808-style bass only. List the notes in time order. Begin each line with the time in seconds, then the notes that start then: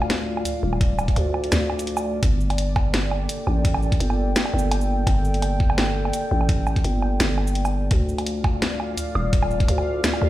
Already playing: D2
0.63 D#1
1.16 D2
1.52 D2
2.23 G1
3.47 A1
4.00 G1
4.54 G1
5.07 G1
6.31 A1
6.84 G1
7.20 G1
7.91 D2
9.15 D#1
9.68 D2
10.22 D2